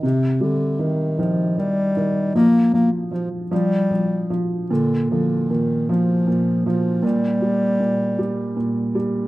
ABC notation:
X:1
M:6/8
L:1/8
Q:3/8=52
K:Bb
V:1 name="Bass clarinet" clef=bass
C, D, E, F, G,2 | B, B, F, G,2 z | D, D, E, F,2 F, | G,4- G, z |]
V:2 name="Felt piano" clef=bass
C, G, E, E, E, E, | F, F, F, F, F, F, | B,, F, B,, F, B,, F, | B,, G, B,, G, B,, G, |]